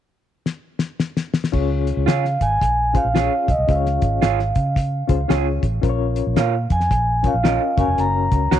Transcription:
0.46 snare
0.79 snare
1.00 snare
1.17 snare
1.34 snare
1.44 snare
1.52 C#2 C#4 F4 G#4 C#5, kick, crash
1.87 closed hi-hat
1.97 C#2
2.06 C#3 F4 G#4 C#5 F5, snare, closed hi-hat
2.25 snare
2.41 G#1 G#5, kick, closed hi-hat
2.61 A#1, kick, closed hi-hat
2.94 C#4 F4 G#4 C5 F5, kick, closed hi-hat
3.04 A#1
3.14 C#4 F4 G#4 C#5, snare, closed hi-hat
3.48 C2 D#5, kick, closed hi-hat
3.58 C2
3.67 C#2 C#4 F4 G#4 C5 F5, kick, closed hi-hat
3.76 C#5
3.86 snare
4.02 G#1, kick, closed hi-hat
4.22 G#1 F4 G#4 C#5, snare, closed hi-hat
4.40 snare
4.55 C#3, kick, closed hi-hat
4.76 kick, closed hi-hat
5.08 C#2 C#4 F4 G#4 C5, kick, closed hi-hat
5.28 C#2 C#4 F4 G#4 C#5, snare, closed hi-hat
5.63 A1, kick, closed hi-hat
5.81 A#1 C#4 F4 A#4 C5, kick, closed hi-hat
5.90 C#5
6.16 closed hi-hat
6.27 A#1
6.36 A#2 F4 A#4 C#5 F5, snare, closed hi-hat
6.70 F2 G#5, kick, closed hi-hat
6.80 snare
6.91 A#1, kick, closed hi-hat
7.23 C#4 F4 A#4 C#5, kick, closed hi-hat
7.27 F5
7.34 A#1
7.43 C#4 F4 A#4 C#5 D#5, snare, closed hi-hat
7.77 F#1 C#4 F#4 A#4 C#5 G#5, kick, closed hi-hat
7.88 F1
7.98 F#1 A#5, closed hi-hat
8.31 C#2, kick, closed hi-hat
8.51 C#2 F#4 A#4 C#5, snare, closed hi-hat

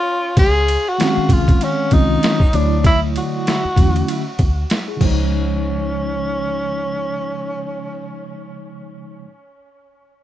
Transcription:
Already playing: F4
0.37 C#2 G#4, kick, ride
0.68 ride
0.89 F#4
0.98 D#3 G#3 C4 C#4 E4, snare, hi-hat pedal, ride
1.07 F5
1.17 muted fingered electric bass stroke
1.29 C2 F4, kick, ride
1.48 kick, ride
1.61 C#4, ride
1.91 C2 D#3 G#3 C4 C#4 D#4 F4, kick, ride
2.23 snare, hi-hat pedal, ride
2.40 kick
2.53 D2 D3 F#3 A3 D4 E4 C#5, ride
2.84 E4, kick, ride
3.16 F#4, ride
3.47 snare, hi-hat pedal, ride
3.65 muted fingered electric bass stroke
3.76 E2 D3 F#3 A3 C#4 E4, kick, ride
3.96 ride
4.08 ride
4.39 D2, kick, ride
4.70 snare, hi-hat pedal, ride
4.88 E4 G#4
4.97 C#3 F3
5.01 C#2 G#3 C#4 C5, kick, crash
5.05 D#4

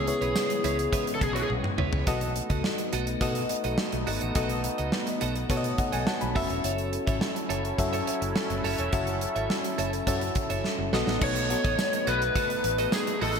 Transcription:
Already playing: C#2 C#3 E3 G#3 B3 C#4 E4 G#4 C#5
0.07 B3 C#4 E4 G#4 C#5, muted clean electric guitar stroke, closed hi-hat
0.21 B1 E4 B4 C#5, closed hi-hat
0.35 muted clean electric guitar stroke, snare, tambourine
0.50 muted clean electric guitar stroke, closed hi-hat
0.64 C#2 E4 B4 C#5, closed hi-hat
0.78 muted clean electric guitar stroke, closed hi-hat
0.92 E4 B4 C#5, kick, closed hi-hat
1.07 muted clean electric guitar stroke, closed hi-hat
1.15 A4
1.21 B1 G#4, muted clean electric guitar stroke, kick, closed hi-hat
1.33 E4 F#4 B4 C#5, closed hi-hat
1.42 G#4
1.50 B1, muted clean electric guitar stroke, high tom
1.64 muted clean electric guitar stroke, mid tom
1.78 C#2 E4 B4 C#5, mid tom
1.92 C#2 E4 B4 C#5, floor tom
2.06 B1 A3 B3 D#4 F#4 A4 D#5, kick, closed hi-hat
2.21 closed hi-hat
2.36 muted clean electric guitar stroke, closed hi-hat
2.50 C#2 F#4 A4 D#5, kick, closed hi-hat
2.64 muted clean electric guitar stroke, snare
2.78 muted clean electric guitar stroke, closed hi-hat
2.93 B1 F#4 A4 D#5, closed hi-hat
3.07 muted clean electric guitar stroke, closed hi-hat
3.21 B2 B3 F#4 A4 D#5, kick, closed hi-hat
3.35 muted clean electric guitar stroke, closed hi-hat
3.49 muted clean electric guitar stroke, closed hi-hat
3.64 B1 F#4 A4 D#5, closed hi-hat
3.78 muted clean electric guitar stroke, snare
3.92 B1, muted clean electric guitar stroke, closed hi-hat
4.07 G#1 F#4 A4 D#5, open hi-hat
4.21 A1 F#4 A4 D#5, closed hi-hat
4.35 B1 B3 F#4 A4 D#5, kick, closed hi-hat
4.49 closed hi-hat
4.64 muted clean electric guitar stroke, closed hi-hat
4.78 C#2 F#4 A4 D#5, closed hi-hat
4.92 muted clean electric guitar stroke, snare
5.07 muted clean electric guitar stroke, closed hi-hat
5.21 B1 F#4 A4 D#5, closed hi-hat
5.36 muted clean electric guitar stroke, closed hi-hat
5.49 B2 B3 F#4 A4 C#5 D#5, kick, closed hi-hat
5.57 D#5
5.64 muted clean electric guitar stroke, closed hi-hat
5.78 D#5 F#5, muted clean electric guitar stroke, kick, closed hi-hat
5.92 B1 F#4 A4 D#5 G#5, closed hi-hat
6.07 F#5 A5, muted clean electric guitar stroke, snare
6.21 B1 G#5 B5, muted clean electric guitar stroke, closed hi-hat
6.35 F#3 C#4 E4 F#4 A4 C#5 E5, kick, open hi-hat
6.50 E1 A4 C#5 E5, closed hi-hat
6.64 F#1 A4 C#5 E5, closed hi-hat
6.78 closed hi-hat
6.93 muted clean electric guitar stroke, closed hi-hat
7.07 G#1 A4 C#5 E5, kick, closed hi-hat
7.21 muted clean electric guitar stroke, snare
7.35 muted clean electric guitar stroke, closed hi-hat
7.49 F#1 A4 C#5 E5, closed hi-hat
7.64 muted clean electric guitar stroke, closed hi-hat
7.78 F#2 C#4 F#4 A4 E5, muted clean electric guitar stroke, kick, closed hi-hat
7.93 A4 C#5 E5, closed hi-hat
8.07 muted clean electric guitar stroke, closed hi-hat
8.21 F#1, muted clean electric guitar stroke, closed hi-hat
8.36 muted clean electric guitar stroke, snare
8.50 F#1, muted clean electric guitar stroke, closed hi-hat
8.64 F#1 A4 C#5 E5, open hi-hat
8.78 E1 A4 C#5 E5, closed hi-hat
8.92 F#1 C#4 F#4 A4 C#5 E5, kick, closed hi-hat
9.07 closed hi-hat
9.21 muted clean electric guitar stroke, closed hi-hat
9.36 G#1 A4 C#5 E5, closed hi-hat
9.50 muted clean electric guitar stroke, snare
9.64 muted clean electric guitar stroke, closed hi-hat
9.78 F#1 A4 C#5 E5, closed hi-hat
9.93 muted clean electric guitar stroke, closed hi-hat
10.07 F#2 C#4 F#4 A4 C#5 E5, kick, closed hi-hat
10.21 muted clean electric guitar stroke, closed hi-hat
10.35 muted clean electric guitar stroke, kick, closed hi-hat
10.50 F#1 A4 C#5 E5, closed hi-hat
10.64 muted clean electric guitar stroke, snare
10.78 F#1, muted clean electric guitar stroke
10.92 B1 A3 B3 D#4 F#4 A4 D#5, snare
11.07 A1 F#4 A4 D#5, snare
11.21 B1 A3 B3 D#4 F#4 A4 C#5 D#5, kick, crash
11.36 closed hi-hat
11.50 B3 D#4 F#4 A4 D#5, muted clean electric guitar stroke, closed hi-hat
11.64 A1 F#4 A4 D#5, kick, closed hi-hat
11.79 muted clean electric guitar stroke, snare, tambourine
11.93 muted clean electric guitar stroke, closed hi-hat
12.07 B1 F#4 A4 B4 D#5, closed hi-hat
12.21 muted clean electric guitar stroke, closed hi-hat
12.35 F#4 A4 D#5, kick, closed hi-hat
12.50 muted clean electric guitar stroke, closed hi-hat
12.64 A1, muted clean electric guitar stroke, closed hi-hat
12.78 F#4 A4 D#5, closed hi-hat
12.92 G#4, muted clean electric guitar stroke, snare, tambourine
13.07 muted clean electric guitar stroke, closed hi-hat
13.21 A1 F#4 A4 D#5, open hi-hat
13.36 A4 D#5, closed hi-hat

